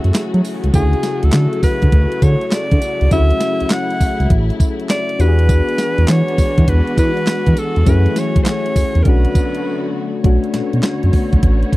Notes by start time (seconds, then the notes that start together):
Already playing: C#3 E3 F#3 A3 C#4 E4 F#4 G#4 E5
0.04 F#2, closed hi-hat
0.14 snare, clap, closed hi-hat, tambourine
0.34 F#3, closed hi-hat
0.45 open hi-hat, tambourine
0.64 C#2, closed hi-hat
0.73 D2 C#3 A3 E4 F#4 G#4, kick, closed hi-hat, tambourine
0.93 closed hi-hat
1.03 snare, closed hi-hat, tambourine
1.23 D2 A4, closed hi-hat
1.32 D3, snare, clap, closed hi-hat, tambourine
1.53 closed hi-hat
1.63 D3 B4, kick, open hi-hat, tambourine
1.82 D3, kick, closed hi-hat
1.92 D2, kick, closed hi-hat
2.12 closed hi-hat
2.22 D3 C#5, kick, closed hi-hat, tambourine
2.41 closed hi-hat
2.48 C#5, snare, clap, tambourine
2.52 D5, closed hi-hat
2.71 D3, kick, closed hi-hat
2.82 closed hi-hat, tambourine
3.01 C#2, closed hi-hat
3.11 D2 A3 C#4 E4 F#4 E5, kick, closed hi-hat, tambourine
3.31 closed hi-hat
3.40 snare, closed hi-hat, tambourine
3.60 C#2, closed hi-hat
3.70 F#5, snare, clap, closed hi-hat, tambourine
3.91 closed hi-hat
4.00 C#2, kick, open hi-hat, tambourine
4.20 C#2, closed hi-hat
4.30 A1, kick, closed hi-hat
4.50 closed hi-hat
4.60 kick, closed hi-hat, tambourine
4.80 closed hi-hat
4.89 D5, snare, clap, closed hi-hat, tambourine
5.09 closed hi-hat
5.19 E2 E3 G#3 B3 D4 F#4 G4 B4, closed hi-hat, tambourine
5.28 G#4
5.39 closed hi-hat
5.49 kick, closed hi-hat, tambourine
5.69 closed hi-hat
5.78 snare, closed hi-hat, tambourine
5.98 E2, closed hi-hat
6.08 E3 C#5, snare, clap, closed hi-hat, tambourine
6.28 closed hi-hat
6.38 E3, kick, open hi-hat, tambourine
6.58 E3, kick, closed hi-hat
6.68 E2 B4, kick, closed hi-hat
6.87 closed hi-hat
6.97 E3 B4, kick, closed hi-hat, tambourine
7.17 closed hi-hat
7.27 snare, clap, closed hi-hat, tambourine
7.46 E3, kick, closed hi-hat
7.57 A4, closed hi-hat, tambourine
7.76 E2, closed hi-hat
7.85 F#2 F#3 A3 C#4 E4 G#4 B4, kick, closed hi-hat, tambourine
8.06 closed hi-hat
8.16 C#5, snare, closed hi-hat, tambourine
8.36 E2, kick, closed hi-hat
8.43 C5, snare, clap, closed hi-hat, tambourine
8.49 C#5
8.66 closed hi-hat
8.76 E2, kick, open hi-hat, tambourine
8.95 E2, closed hi-hat
9.03 B1 D3 F#3 A3 B3 C#4 D4 F#4 A#4, kick, closed hi-hat
9.07 F#4 B4
9.25 closed hi-hat
9.35 kick, closed hi-hat, tambourine
9.55 closed hi-hat
10.24 B1 D3 A3 B3 C#4 D4 F#4 C#5, kick, closed hi-hat
10.44 closed hi-hat
10.54 B2, snare, closed hi-hat
10.73 B2, closed hi-hat
10.83 snare, clap, closed hi-hat
11.03 F#2, closed hi-hat
11.13 kick, open hi-hat
11.33 B1, kick, closed hi-hat
11.43 A1, kick, closed hi-hat
11.63 closed hi-hat
11.73 kick, closed hi-hat